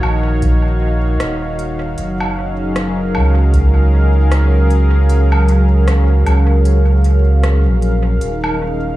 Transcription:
0.00 1.17 A#1 medium
0.00 1.98 D#3 medium
0.00 4.37 D#4 medium
0.00 3.65 F#4 medium
0.00 3.21 C#5 medium
0.00 8.97 F5 medium
0.00 low woodblock medium
0.42 kick loud
0.42 closed hi-hat soft
1.20 1.95 D#1 medium
1.20 cross-stick medium
1.20 closed hi-hat soft
1.59 closed hi-hat soft
1.98 3.17 F#1 loud
1.98 8.21 F#3 medium
1.98 closed hi-hat soft
2.20 low woodblock medium
2.37 8.97 C#4 medium
2.54 8.97 G#4 medium
2.73 8.97 A#4 medium
2.73 cross-stick medium
2.73 closed hi-hat soft
3.15 6.23 C#2 medium
3.15 low woodblock medium
3.54 kick loud
3.54 closed hi-hat soft
4.32 cross-stick medium
4.32 closed hi-hat soft
4.71 closed hi-hat soft
5.10 closed hi-hat medium
5.32 low woodblock medium
5.48 closed hi-hat soft
5.88 cross-stick medium
5.88 closed hi-hat soft
6.26 7.67 C#2 medium
6.26 closed hi-hat soft
6.26 low woodblock medium
6.65 closed hi-hat soft
7.04 closed hi-hat soft
7.43 cross-stick medium
7.43 closed hi-hat medium
7.66 8.18 A#1 medium
7.82 closed hi-hat soft
8.21 8.97 D#1 loud
8.21 8.97 D#3 medium
8.21 closed hi-hat medium
8.42 8.97 D#4 medium
8.42 low woodblock medium

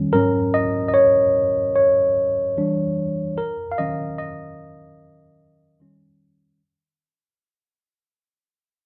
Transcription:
0.00 0.13 D#3 soft
0.00 0.13 G3 soft
0.00 0.13 C#4 medium
0.13 1.30 G#2 medium
0.13 1.31 F#3 soft
0.13 1.31 C#4 medium
0.13 0.50 A#4 medium
0.54 0.87 D#5 medium
0.88 0.93 D#5 medium
0.94 1.74 C#5 medium
1.76 2.92 C#5 medium
2.57 3.33 E3 soft
2.57 3.33 G3 soft
2.57 3.33 D4 medium
3.38 3.69 A#4 medium
3.72 3.77 F5 medium
3.78 5.76 D#3 soft
3.78 5.76 F#3 soft
3.78 5.77 C#4 medium
3.78 4.17 D#5 medium
4.18 5.76 D#5 medium
5.80 6.57 D#3 soft
5.80 6.57 G3 soft
5.80 6.57 C#4 soft

